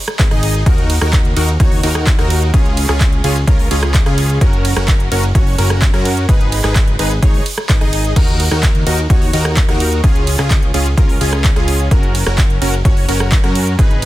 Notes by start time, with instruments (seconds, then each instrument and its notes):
0.08 cross-stick, closed hi-hat
0.19 analog synth bass G#1, supersaw synth D#4 G#4 B4, kick, clap, closed hi-hat
0.31 analog synth bass G#1, supersaw synth D#4 G#4 D#5, cross-stick, closed hi-hat
0.43 open hi-hat, ride
0.55 closed hi-hat
0.66 analog synth bass D#2, supersaw synth D#4 F#4 A#4, kick, closed hi-hat
0.78 closed hi-hat
0.90 open hi-hat, ride
1.01 analog synth bass D#2, supersaw synth D#4 F#4 A#4, cross-stick, closed hi-hat
1.13 kick, clap, closed hi-hat
1.25 closed hi-hat
1.36 analog synth bass D#2, supersaw synth D#4 F#4 A#4, open hi-hat, ride
1.48 closed hi-hat
1.60 analog synth bass D#2, supersaw synth D#4 F#4 C#5, kick, closed hi-hat
1.72 open hi-hat
1.83 analog synth bass D#2, supersaw synth D#4 F#4 A#4, open hi-hat, ride
1.95 cross-stick, closed hi-hat
2.07 kick, clap, closed hi-hat
2.19 analog synth bass D#2, supersaw synth D#4 F#4 A#4, cross-stick, closed hi-hat
2.30 open hi-hat, ride
2.42 closed hi-hat
2.54 analog synth bass C#2, supersaw synth C#4 F4 G#4, kick, closed hi-hat
2.65 closed hi-hat
2.77 open hi-hat, ride
2.89 analog synth bass C#2, supersaw synth C#4 F4 G#4, cross-stick, clap, closed hi-hat
3.01 kick, clap, closed hi-hat
3.12 closed hi-hat
3.24 analog synth bass C#2, supersaw synth C#4 F4 G#4, open hi-hat, ride
3.36 closed hi-hat
3.47 analog synth bass C#2, supersaw synth C#4 F4 A#4, kick, closed hi-hat
3.59 open hi-hat
3.71 analog synth bass C#2, supersaw synth C#4 F4 G#4, open hi-hat, ride
3.83 cross-stick, closed hi-hat
3.94 kick, clap, closed hi-hat
4.06 analog synth bass C#2, supersaw synth C#4 F4 G#4, cross-stick, closed hi-hat
4.18 open hi-hat, ride
4.30 closed hi-hat
4.41 analog synth bass F#1, supersaw synth C#4 F#4 A#4, kick, closed hi-hat
4.53 closed hi-hat
4.65 open hi-hat, ride
4.76 analog synth bass F#1, supersaw synth C#4 F#4 A#4, cross-stick, closed hi-hat
4.88 kick, clap, closed hi-hat
5.00 closed hi-hat
5.12 analog synth bass F#1, supersaw synth C#4 F#4 A#4, open hi-hat, ride
5.23 closed hi-hat
5.35 analog synth bass F#1, supersaw synth C#4 F#4 C#5, kick, closed hi-hat
5.47 open hi-hat
5.58 analog synth bass F#1, supersaw synth C#4 F#4 A#4, open hi-hat, ride
5.70 cross-stick, closed hi-hat
5.82 kick, clap, closed hi-hat
5.94 analog synth bass F#2, supersaw synth C#4 F#4 A#4, cross-stick, closed hi-hat
6.05 open hi-hat, ride
6.17 closed hi-hat
6.29 analog synth bass G#1, supersaw synth D#4 G#4 B4, kick, closed hi-hat
6.41 closed hi-hat
6.52 open hi-hat, ride
6.64 analog synth bass G#1, supersaw synth D#4 G#4 B4, cross-stick, clap, closed hi-hat
6.76 kick, clap, closed hi-hat
6.87 closed hi-hat
6.99 analog synth bass G#1, supersaw synth D#4 G#4 B4, open hi-hat, ride
7.11 closed hi-hat
7.23 analog synth bass G#1, supersaw synth D#4 G#4 C#5, kick, closed hi-hat
7.34 open hi-hat
7.46 open hi-hat, ride
7.58 cross-stick, closed hi-hat
7.69 analog synth bass G#1, supersaw synth D#4 G#4 B4, kick, clap, closed hi-hat
7.81 analog synth bass G#1, supersaw synth D#4 G#4 D#5, cross-stick, closed hi-hat
7.93 open hi-hat, ride
8.05 closed hi-hat
8.16 analog synth bass D#2, supersaw synth D#4 F#4 A#4, kick, closed hi-hat, crash
8.28 closed hi-hat
8.40 open hi-hat, ride
8.51 analog synth bass D#2, supersaw synth D#4 F#4 A#4, cross-stick, closed hi-hat
8.63 kick, clap, closed hi-hat
8.75 closed hi-hat
8.87 analog synth bass D#2, supersaw synth D#4 F#4 A#4, open hi-hat, ride
8.98 closed hi-hat
9.10 analog synth bass D#2, supersaw synth D#4 F#4 C#5, kick, closed hi-hat
9.22 open hi-hat
9.33 analog synth bass D#2, supersaw synth D#4 F#4 A#4, open hi-hat, ride
9.45 cross-stick, closed hi-hat
9.57 kick, clap, closed hi-hat
9.69 analog synth bass D#2, supersaw synth D#4 F#4 A#4, cross-stick, closed hi-hat
9.80 open hi-hat, ride
9.92 closed hi-hat
10.04 analog synth bass C#2, supersaw synth C#4 F4 G#4, kick, closed hi-hat
10.16 closed hi-hat
10.27 open hi-hat, ride
10.39 analog synth bass C#2, supersaw synth C#4 F4 G#4, cross-stick, clap
10.51 kick, clap, closed hi-hat
10.62 closed hi-hat
10.74 analog synth bass C#2, supersaw synth C#4 F4 G#4, open hi-hat, ride
10.86 closed hi-hat
10.97 analog synth bass C#2, supersaw synth C#4 F4 A#4, kick, closed hi-hat
11.09 open hi-hat
11.21 analog synth bass C#2, supersaw synth C#4 F4 G#4, open hi-hat, ride
11.33 cross-stick, closed hi-hat
11.44 kick, clap, closed hi-hat
11.56 analog synth bass C#2, supersaw synth C#4 F4 G#4, cross-stick, closed hi-hat
11.68 open hi-hat, ride
11.80 closed hi-hat
11.91 analog synth bass F#1, supersaw synth C#4 F#4 A#4, kick, closed hi-hat
12.03 closed hi-hat
12.15 open hi-hat, ride
12.26 analog synth bass F#1, supersaw synth C#4 F#4 A#4, cross-stick, closed hi-hat
12.38 kick, clap, closed hi-hat
12.50 closed hi-hat
12.62 analog synth bass F#1, supersaw synth C#4 F#4 A#4, open hi-hat, ride
12.73 closed hi-hat
12.85 analog synth bass F#1, supersaw synth C#4 F#4 C#5, kick, closed hi-hat
12.97 open hi-hat
13.08 analog synth bass F#1, supersaw synth C#4 F#4 A#4, open hi-hat, ride
13.20 cross-stick, closed hi-hat
13.32 kick, clap, closed hi-hat
13.44 analog synth bass F#2, supersaw synth C#4 F#4 A#4, cross-stick, closed hi-hat
13.55 open hi-hat, ride
13.67 closed hi-hat
13.79 analog synth bass G#1, supersaw synth D#4 G#4 B4, kick, closed hi-hat
13.91 closed hi-hat